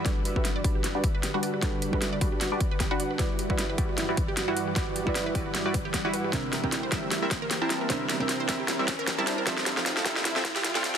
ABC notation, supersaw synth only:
X:1
M:4/4
L:1/16
Q:"Swing 16ths" 1/4=153
K:Edor
V:1 name="Supersaw synth"
[G,DFBd]3 [G,DFBe]3 [G,DFBd]3 [G,DFBd] z3 [G,DFBf]3 | [G,DFBd]3 [G,DFBe]3 [G,DFBd]3 [G,DFBd] z3 [G,DFBf]3 | [G,EFBd]3 [G,EFBe]3 [G,EFBd]3 [G,EFBd] z3 [G,EFBf]3 | [G,EFBd]3 [G,EFBe]3 [G,EFBd]3 [G,EFBd] z3 [G,EFBf]3 |
[E_Be]3 [G,=CEBg]3 [G,CEBe]3 [G,CEBe] z3 [G,CEBa]3 | [G,=CE_Be]3 [G,CEBg]3 [G,CEBe]3 [G,CEBe] z3 [G,CEBa]3 | [G,=C=FAe]3 [G,CFA=f]3 [G,CFAe]3 [G,CFAe] z3 [G,CFAg]3 |]